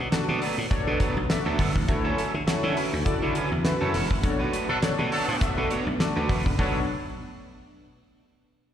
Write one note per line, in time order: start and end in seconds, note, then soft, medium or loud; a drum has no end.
0.00 1.86 A3 medium
0.00 1.86 B3 medium
0.00 1.86 D4 medium
0.00 muted clean electric guitar stroke soft
0.11 0.44 D4 medium
0.11 0.44 F#4 medium
0.11 0.44 A4 medium
0.11 0.45 D5 medium
0.11 muted slap bass stroke soft
0.11 muted clean electric guitar stroke medium
0.11 snare loud
0.11 closed hi-hat medium
0.29 0.39 B2 loud
0.29 0.40 F#3 medium
0.29 0.41 B3 medium
0.29 0.41 D4 medium
0.29 0.42 A4 medium
0.42 0.55 F#3 medium
0.42 0.55 B3 medium
0.42 0.55 D4 medium
0.42 0.55 B4 medium
0.42 open hi-hat medium
0.58 0.68 A2 medium
0.58 muted clean electric guitar stroke soft
0.70 1.03 D4 medium
0.70 1.03 F#4 medium
0.70 1.03 A4 medium
0.70 1.03 C#5 loud
0.70 muted slap bass stroke soft
0.70 muted clean electric guitar stroke soft
0.70 kick loud
0.70 closed hi-hat medium
0.87 0.97 B2 loud
0.87 0.98 F#3 soft
0.87 0.98 B3 soft
0.87 0.98 D4 medium
0.87 0.98 A4 medium
1.00 1.17 F#3 medium
1.00 1.16 B3 loud
1.00 1.16 D4 loud
1.00 1.16 B4 loud
1.00 kick medium
1.00 closed hi-hat medium
1.16 1.27 B1 loud
1.16 muted clean electric guitar stroke soft
1.29 1.62 D4 medium
1.29 1.62 F#4 medium
1.29 1.62 A4 medium
1.29 1.62 E5 medium
1.29 muted clean electric guitar stroke soft
1.29 snare loud
1.29 closed hi-hat medium
1.46 1.56 D2 medium
1.46 1.57 F#3 medium
1.46 1.58 B3 medium
1.46 1.58 D4 medium
1.46 1.58 A4 medium
1.59 1.72 G1 medium
1.59 1.72 F#3 medium
1.59 1.72 B3 medium
1.59 1.72 D4 medium
1.59 1.73 A4 medium
1.59 kick medium
1.59 open hi-hat medium
1.75 1.86 A1 loud
1.75 muted clean electric guitar stroke soft
1.75 kick medium
1.88 2.12 D2 loud
1.88 4.21 C#3 medium
1.88 4.21 D3 medium
1.88 2.21 E4 medium
1.88 4.21 E4 medium
1.88 2.21 F#4 medium
1.88 4.21 F#4 medium
1.88 2.21 A4 medium
1.88 2.21 C#5 loud
1.88 muted clean electric guitar stroke soft
1.88 kick loud
1.88 closed hi-hat medium
2.04 2.16 F#3 medium
2.04 2.17 C#4 medium
2.04 2.17 E4 medium
2.04 2.17 A4 medium
2.18 2.31 F#3 medium
2.18 2.31 C#4 medium
2.18 2.31 E4 medium
2.18 2.31 A4 medium
2.18 closed hi-hat medium
2.34 2.45 D3 medium
2.34 muted clean electric guitar stroke medium
2.47 2.79 E4 medium
2.47 2.80 F#4 medium
2.47 2.80 A4 medium
2.47 2.80 C#5 loud
2.47 muted clean electric guitar stroke soft
2.47 muted slap bass stroke soft
2.47 snare loud
2.47 closed hi-hat medium
2.63 2.74 D3 loud
2.63 2.75 F#3 medium
2.63 2.75 C#4 medium
2.63 2.76 E4 medium
2.63 2.77 A4 medium
2.76 2.90 F#3 medium
2.76 2.90 C#4 medium
2.76 2.90 E4 medium
2.76 2.90 B4 medium
2.76 open hi-hat medium
2.93 3.03 D2 medium
2.93 muted clean electric guitar stroke soft
3.05 3.38 E4 medium
3.05 3.38 F#4 medium
3.05 3.38 A4 medium
3.05 3.39 D5 loud
3.05 muted clean electric guitar stroke soft
3.05 kick loud
3.05 closed hi-hat medium
3.22 3.33 D3 loud
3.22 3.33 F#3 medium
3.22 3.33 C#4 medium
3.22 3.33 E4 medium
3.22 3.33 A4 medium
3.35 3.52 F#3 loud
3.35 3.51 C#4 medium
3.35 3.51 E4 loud
3.35 3.51 B4 loud
3.35 closed hi-hat medium
3.51 3.62 E2 medium
3.51 muted clean electric guitar stroke soft
3.64 3.97 E4 medium
3.64 3.97 F#4 medium
3.64 3.97 A4 medium
3.64 3.97 B4 medium
3.64 muted clean electric guitar stroke soft
3.64 snare loud
3.64 closed hi-hat medium
3.81 3.91 F#2 medium
3.81 3.93 F#3 medium
3.81 3.93 C#4 medium
3.81 3.93 E4 medium
3.81 3.94 A4 medium
3.94 4.07 E1 medium
3.94 4.07 F#3 medium
3.94 4.08 C#4 medium
3.94 4.08 E4 medium
3.94 4.08 A4 medium
3.94 open hi-hat medium
4.10 4.21 F#1 loud
4.10 muted clean electric guitar stroke soft
4.10 kick medium
4.23 4.47 B1 loud
4.23 6.57 A3 medium
4.23 6.57 B3 medium
4.23 4.56 D4 medium
4.23 6.57 D4 medium
4.23 4.56 F#4 medium
4.23 4.56 A4 medium
4.23 4.56 C#5 medium
4.23 muted clean electric guitar stroke soft
4.23 kick loud
4.23 closed hi-hat medium
4.39 4.52 A3 medium
4.39 4.52 D4 medium
4.39 4.52 F#4 medium
4.39 4.53 B4 medium
4.53 4.66 A3 medium
4.53 4.66 D4 medium
4.53 4.66 F#4 medium
4.53 4.67 B4 medium
4.53 closed hi-hat medium
4.69 4.80 B2 medium
4.69 4.78 F#3 loud
4.69 4.78 D4 loud
4.69 4.78 A4 loud
4.69 muted clean electric guitar stroke soft
4.82 5.15 D4 medium
4.82 5.15 F#4 medium
4.82 5.15 A4 medium
4.82 5.15 C#5 medium
4.82 muted slap bass stroke soft
4.82 muted clean electric guitar stroke soft
4.82 snare loud
4.82 closed hi-hat medium
4.99 5.09 B2 medium
4.99 5.10 A3 medium
4.99 5.11 D4 medium
4.99 5.11 F#4 medium
4.99 5.12 B4 medium
5.11 5.51 F#3 loud
5.11 5.25 A3 medium
5.11 5.51 D4 loud
5.11 5.25 D4 medium
5.11 5.25 F#4 medium
5.11 5.51 A4 loud
5.11 5.26 C#5 medium
5.11 open hi-hat medium
5.28 5.39 A2 medium
5.28 muted clean electric guitar stroke soft
5.41 5.74 D4 loud
5.41 5.74 F#4 medium
5.41 5.74 A4 medium
5.41 5.74 E5 loud
5.41 muted clean electric guitar stroke soft
5.41 kick loud
5.41 closed hi-hat medium
5.57 5.68 B2 loud
5.57 5.68 A3 medium
5.57 5.68 D4 medium
5.57 5.68 F#4 medium
5.57 5.68 B4 medium
5.70 5.87 A3 medium
5.70 5.87 D4 medium
5.70 5.86 F#4 loud
5.70 5.87 C#5 loud
5.70 closed hi-hat medium
5.87 5.97 B1 medium
5.87 muted clean electric guitar stroke soft
6.00 6.32 D4 medium
6.00 6.33 F#4 medium
6.00 6.33 A4 medium
6.00 6.33 D5 medium
6.00 muted clean electric guitar stroke soft
6.00 snare loud
6.00 closed hi-hat medium
6.16 6.27 D2 medium
6.16 6.28 A3 medium
6.16 6.28 D4 medium
6.16 6.28 F#4 medium
6.16 6.29 B4 medium
6.29 6.43 E1 medium
6.29 6.43 A3 medium
6.29 6.43 D4 medium
6.29 6.43 F#4 medium
6.29 6.43 B4 medium
6.29 kick medium
6.29 open hi-hat medium
6.46 6.56 F#1 medium
6.46 muted clean electric guitar stroke soft
6.46 kick medium
6.58 6.86 B1 loud
6.58 6.80 F#3 medium
6.58 6.78 A3 medium
6.58 6.86 D4 medium
6.58 6.78 D4 medium
6.58 6.79 D4 medium
6.58 6.86 F#4 medium
6.58 6.78 F#4 medium
6.58 6.79 A4 medium
6.58 6.86 A4 medium
6.58 6.78 B4 medium
6.58 6.86 C#5 medium
6.58 kick loud